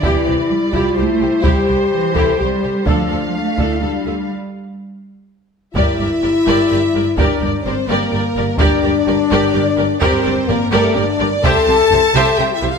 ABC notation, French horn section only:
X:1
M:3/4
L:1/8
Q:1/4=127
K:Gdor
V:1 name="French horn section"
E3 F E2 | G3 A G2 | D3 E D2 | z6 |
E6 | D2 C B,3 | D6 | C2 B, A, D2 |
A4 (3G E F |]